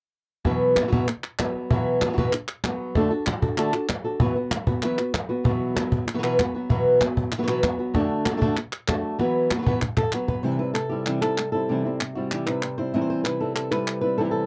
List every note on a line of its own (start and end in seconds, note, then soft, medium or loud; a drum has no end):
0.44 0.75 B2 medium
0.44 0.76 E3 medium
0.44 0.76 F#3 medium
0.44 0.76 B3 medium
0.44 0.75 F#4 medium
0.44 0.74 B4 medium
0.44 cajon bass medium
0.44 cajon slap soft
0.75 0.82 F#3 soft
0.75 0.83 B3 soft
0.75 0.83 F#4 medium
0.75 0.83 B4 medium
0.75 cajon slap loud
0.75 clap medium
0.83 0.87 E3 medium
0.83 0.87 F#3 soft
0.83 0.87 B3 soft
0.83 0.87 F#4 medium
0.83 0.88 B4 soft
0.88 0.91 E3 medium
0.88 0.91 F#3 medium
0.88 0.91 B3 medium
0.88 0.92 F#4 medium
0.88 0.92 B4 medium
0.92 1.07 B2 medium
0.92 1.07 E3 medium
0.92 1.07 F#3 medium
0.92 1.07 B3 medium
0.92 1.08 F#4 medium
0.92 1.07 B4 medium
0.92 cajon bass medium
1.08 muted nylon-string guitar stroke medium
1.08 clap medium
1.24 clap medium
1.39 1.70 F#3 medium
1.39 1.70 B3 medium
1.39 1.70 F#4 medium
1.39 1.70 B4 medium
1.39 cajon slap loud
1.39 clap medium
1.56 cajon slap soft
1.71 2.01 B2 medium
1.71 2.01 E3 medium
1.71 2.01 F#3 medium
1.71 2.01 B3 medium
1.71 2.01 F#4 loud
1.71 2.01 B4 medium
1.71 cajon bass medium
1.87 cajon slap soft
2.02 2.07 F#3 medium
2.02 2.08 B3 soft
2.02 2.09 F#4 medium
2.02 2.09 B4 medium
2.02 cajon slap medium
2.02 clap medium
2.08 2.12 E3 soft
2.08 2.12 F#3 medium
2.08 2.13 B3 medium
2.08 2.13 F#4 soft
2.08 2.13 B4 medium
2.13 2.17 E3 medium
2.13 2.17 F#3 medium
2.13 2.17 B3 medium
2.13 2.17 F#4 medium
2.13 2.17 B4 medium
2.18 2.32 B2 medium
2.18 2.32 E3 medium
2.18 2.33 F#3 medium
2.18 2.33 B3 medium
2.18 2.33 F#4 medium
2.18 2.33 B4 medium
2.18 cajon bass medium
2.33 muted nylon-string guitar stroke medium
2.33 clap medium
2.48 clap medium
2.64 2.95 F#3 medium
2.64 2.95 B3 medium
2.64 2.95 F#4 medium
2.64 2.95 B4 medium
2.64 cajon slap medium
2.64 clap medium
2.95 3.11 D3 medium
2.95 3.11 A3 medium
2.95 3.11 D4 medium
2.95 3.10 F#4 medium
2.95 3.09 A4 medium
2.95 cajon bass medium
2.95 cajon slap soft
3.10 3.25 D4 soft
3.10 3.26 F#4 soft
3.10 3.26 A4 medium
3.10 cajon slap soft
3.26 muted nylon-string guitar stroke medium
3.26 cajon slap loud
3.26 clap medium
3.42 3.57 D4 soft
3.42 3.57 F#4 medium
3.42 3.57 A4 medium
3.42 cajon bass medium
3.57 3.72 D3 medium
3.57 3.73 A3 medium
3.57 3.73 D4 medium
3.57 3.73 F#4 medium
3.57 3.72 A4 medium
3.57 clap medium
3.73 3.88 D4 soft
3.73 3.88 F#4 soft
3.73 3.88 A4 medium
3.73 clap medium
3.89 muted nylon-string guitar stroke medium
3.89 cajon slap medium
3.89 clap medium
4.04 4.20 D4 soft
4.04 4.20 F#4 soft
4.04 4.19 A4 soft
4.04 cajon slap soft
4.20 4.35 E3 medium
4.20 4.36 F#3 medium
4.20 4.36 B3 medium
4.20 4.35 F#4 medium
4.20 4.34 B4 medium
4.20 cajon bass medium
4.36 4.51 B3 soft
4.36 4.51 B4 medium
4.51 muted nylon-string guitar stroke medium
4.51 cajon slap medium
4.51 clap medium
4.67 4.83 B3 soft
4.67 4.83 F#4 soft
4.67 4.82 B4 medium
4.67 cajon bass medium
4.82 4.98 E3 medium
4.82 4.98 F#3 medium
4.82 4.98 B3 medium
4.82 4.98 F#4 medium
4.82 4.97 B4 loud
4.82 clap medium
4.98 5.13 B3 soft
4.98 5.13 F#4 soft
4.98 5.13 B4 medium
4.98 clap medium
5.14 muted nylon-string guitar stroke medium
5.14 cajon slap medium
5.14 clap medium
5.29 5.44 B3 soft
5.29 5.45 F#4 soft
5.29 5.44 B4 medium
5.44 5.75 B2 medium
5.44 5.76 E3 medium
5.44 5.76 F#3 medium
5.44 5.76 B3 medium
5.44 5.75 F#4 medium
5.44 5.74 B4 medium
5.44 cajon bass medium
5.61 cajon slap soft
5.76 6.06 F#3 soft
5.76 6.07 B3 soft
5.76 6.06 F#4 medium
5.76 6.07 B4 medium
5.76 cajon slap loud
5.76 clap medium
5.92 cajon bass medium
6.07 muted nylon-string guitar stroke medium
6.07 clap medium
6.14 6.17 E3 medium
6.14 6.18 F#3 medium
6.14 6.18 B3 medium
6.14 6.18 F#4 medium
6.14 6.18 B4 medium
6.18 6.22 E3 medium
6.18 6.22 F#3 medium
6.18 6.23 B3 medium
6.18 6.22 F#4 medium
6.18 6.23 B4 medium
6.23 6.38 B2 medium
6.23 6.38 E3 medium
6.23 6.38 F#3 medium
6.23 6.38 B3 medium
6.23 6.38 F#4 medium
6.23 6.39 B4 medium
6.23 clap medium
6.39 6.54 F#3 medium
6.39 6.54 B3 medium
6.39 6.54 F#4 medium
6.39 6.53 B4 medium
6.39 cajon bass medium
6.39 cajon slap medium
6.39 clap medium
6.54 6.69 F#3 soft
6.54 6.70 B3 medium
6.54 6.70 F#4 soft
6.54 6.69 B4 medium
6.54 cajon slap soft
6.69 7.00 B2 medium
6.69 7.00 E3 medium
6.69 7.01 F#3 medium
6.69 7.01 B3 medium
6.69 7.00 F#4 medium
6.69 6.99 B4 medium
6.69 cajon bass medium
6.86 cajon slap soft
7.00 7.32 F#3 soft
7.00 7.31 B3 medium
7.00 7.32 F#4 medium
7.00 7.31 B4 medium
7.00 cajon slap loud
7.00 clap medium
7.17 cajon bass medium
7.32 muted nylon-string guitar stroke medium
7.32 clap medium
7.38 7.41 E3 medium
7.38 7.41 F#3 medium
7.38 7.42 B3 medium
7.38 7.43 F#4 medium
7.38 7.42 B4 medium
7.42 7.46 E3 medium
7.42 7.46 F#3 medium
7.42 7.46 B3 medium
7.42 7.47 F#4 medium
7.42 7.47 B4 medium
7.47 7.63 B2 medium
7.47 7.63 E3 medium
7.47 7.62 F#3 medium
7.47 7.63 B3 medium
7.47 7.63 F#4 medium
7.47 7.63 B4 medium
7.47 clap medium
7.63 7.78 F#3 medium
7.63 7.78 B3 medium
7.63 7.78 F#4 medium
7.63 7.77 B4 medium
7.63 cajon bass medium
7.63 cajon slap medium
7.63 clap medium
7.79 7.94 F#3 soft
7.79 7.94 B3 soft
7.79 7.94 F#4 soft
7.79 7.94 B4 medium
7.94 8.25 D3 medium
7.94 8.25 A3 medium
7.94 8.26 D4 medium
7.94 8.26 F#4 medium
7.94 8.25 A4 medium
7.94 cajon bass medium
7.94 cajon slap soft
8.26 8.32 D4 soft
8.26 8.32 F#4 soft
8.26 8.32 A4 medium
8.26 cajon slap medium
8.26 clap medium
8.33 8.36 A3 soft
8.33 8.36 D4 soft
8.33 8.36 F#4 soft
8.33 8.37 A4 medium
8.37 8.40 A3 medium
8.37 8.41 D4 medium
8.37 8.41 F#4 medium
8.37 8.41 A4 medium
8.41 8.56 D3 medium
8.41 8.57 A3 medium
8.41 8.57 D4 medium
8.41 8.57 F#4 medium
8.41 8.57 A4 medium
8.41 cajon bass medium
8.57 muted nylon-string guitar stroke medium
8.57 clap medium
8.73 clap medium
8.88 9.19 A3 medium
8.88 9.19 D4 medium
8.88 9.20 F#4 medium
8.88 9.20 A4 medium
8.88 cajon bass medium
8.88 cajon slap medium
8.88 clap medium
9.05 cajon slap soft
9.19 9.50 E3 medium
9.19 9.50 F#3 medium
9.19 9.50 B3 medium
9.19 9.50 F#4 medium
9.19 9.49 B4 medium
9.19 cajon slap medium
9.51 9.57 B3 soft
9.51 9.57 F#4 soft
9.51 9.58 B4 medium
9.51 cajon slap medium
9.51 clap medium
9.57 9.61 F#3 medium
9.57 9.62 B3 soft
9.57 9.62 F#4 medium
9.57 9.62 B4 medium
9.62 9.66 F#3 medium
9.62 9.66 B3 medium
9.62 9.66 F#4 medium
9.62 9.67 B4 medium
9.67 9.80 E3 medium
9.67 9.80 F#3 medium
9.67 9.81 B3 medium
9.67 9.81 F#4 medium
9.67 9.81 B4 medium
9.67 cajon bass medium
9.81 muted nylon-string guitar stroke medium
9.81 cajon bass medium
9.81 clap medium
9.97 10.15 A4 medium
9.97 cajon bass medium
9.97 clap medium
10.12 10.44 F#3 medium
10.12 10.44 B3 medium
10.12 10.44 F#4 medium
10.12 10.27 B4 medium
10.12 clap medium
10.28 10.43 B4 medium
10.28 cajon bass medium
10.43 10.59 C3 medium
10.43 11.22 C3 medium
10.43 10.59 E3 medium
10.43 10.59 G3 medium
10.43 10.59 C4 medium
10.43 10.58 E4 medium
10.43 10.52 C5 medium
10.52 10.58 B4 medium
10.59 10.75 G3 soft
10.59 10.75 C4 soft
10.59 10.74 E4 soft
10.59 10.73 B4 medium
10.74 11.20 A4 medium
10.74 muted nylon-string guitar stroke soft
10.74 clap medium
10.89 12.16 G3 medium
10.89 11.06 G3 soft
10.89 11.07 C4 soft
10.89 11.06 E4 soft
10.89 11.04 G4 medium
11.05 11.22 C3 medium
11.05 11.22 E3 medium
11.05 11.22 G3 medium
11.05 11.23 C4 medium
11.05 11.22 E4 medium
11.05 11.53 G4 medium
11.05 clap medium
11.21 11.69 C3 medium
11.21 11.38 G3 soft
11.21 11.38 C4 soft
11.21 11.37 E4 soft
11.21 11.51 A4 medium
11.21 clap medium
11.38 muted nylon-string guitar stroke soft
11.38 clap medium
11.52 11.70 G3 soft
11.52 11.69 C4 soft
11.52 11.69 E4 soft
11.52 12.00 A4 medium
11.69 11.84 C3 medium
11.69 12.48 C3 medium
11.69 11.85 E3 medium
11.69 11.85 G3 medium
11.69 11.84 C4 medium
11.69 11.83 E4 medium
11.69 12.15 G4 medium
11.85 12.00 G3 soft
11.85 12.00 C4 soft
11.85 12.01 C4 soft
11.85 12.00 E4 soft
12.00 12.63 C4 soft
12.00 muted nylon-string guitar stroke soft
12.00 clap medium
12.15 13.41 G3 medium
12.15 12.32 G3 soft
12.15 12.32 C4 soft
12.15 12.31 E4 soft
12.15 12.31 F#4 medium
12.31 12.47 C3 medium
12.31 12.47 E3 medium
12.31 12.47 G3 medium
12.31 12.48 C4 medium
12.31 12.46 E4 medium
12.31 12.78 G4 medium
12.31 clap medium
12.46 12.95 C3 medium
12.46 12.62 G3 soft
12.46 12.63 C4 soft
12.46 12.62 E4 soft
12.46 12.77 B4 medium
12.46 clap medium
12.62 13.27 C4 soft
12.62 muted nylon-string guitar stroke soft
12.62 clap medium
12.78 12.94 G3 soft
12.78 12.94 C4 soft
12.78 12.93 E4 soft
12.78 12.94 C5 medium
12.94 13.24 C3 medium
12.94 14.17 C3 medium
12.94 13.24 E3 medium
12.94 13.25 G3 medium
12.94 13.25 C4 medium
12.94 13.26 E4 medium
12.94 13.01 D#5 medium
13.01 13.09 C5 medium
13.10 13.23 C5 medium
13.24 13.40 E3 soft
13.24 13.41 G3 soft
13.24 13.41 C4 soft
13.24 13.40 E4 soft
13.24 13.70 B4 medium
13.24 clap medium
13.40 13.73 G3 soft
13.40 14.17 C4 medium
13.40 13.71 C4 soft
13.40 13.70 E4 soft
13.40 13.54 A4 medium
13.55 14.03 A4 medium
13.55 clap medium
13.71 14.17 G3 medium
13.71 14.03 G3 soft
13.71 14.03 C4 soft
13.71 14.02 E4 soft
13.71 14.00 B4 medium
13.71 clap medium
13.88 clap medium
14.01 14.18 G3 soft
14.01 14.19 C4 soft
14.01 14.18 E4 soft
14.01 14.46 B4 medium
14.18 14.46 C3 medium
14.18 14.46 E3 medium
14.18 14.46 G3 medium
14.18 14.46 C4 medium
14.18 14.46 E4 medium
14.18 14.25 A4 medium
14.25 14.31 G4 medium
14.31 14.46 A4 medium